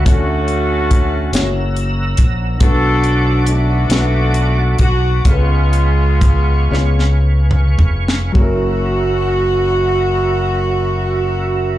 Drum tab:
HH |x-x-x-x-x-x-|x-x-x-x-x-x-|x-x-x-------|------------|
SD |------o-----|------o-----|------oo---o|------------|
T2 |------------|------------|---------o--|------------|
FT |------------|------------|----------o-|------------|
BD |o---o-----o-|o---------o-|o---o-------|o-----------|